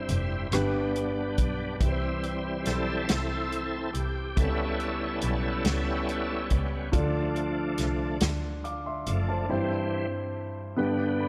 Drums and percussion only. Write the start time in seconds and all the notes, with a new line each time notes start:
0.09 cross-stick, closed hi-hat
0.52 cross-stick, closed hi-hat
0.96 closed hi-hat
1.38 kick, closed hi-hat
1.80 kick, closed hi-hat
2.23 closed hi-hat
2.66 snare, closed hi-hat
3.09 snare, closed hi-hat
3.52 closed hi-hat
3.94 closed hi-hat
4.37 kick, closed hi-hat
4.80 closed hi-hat
5.21 closed hi-hat
5.65 snare, closed hi-hat
6.09 closed hi-hat
6.50 kick, closed hi-hat
6.93 kick, closed hi-hat
7.36 closed hi-hat
7.78 snare, closed hi-hat
8.20 snare, closed hi-hat
8.65 closed hi-hat
9.06 closed hi-hat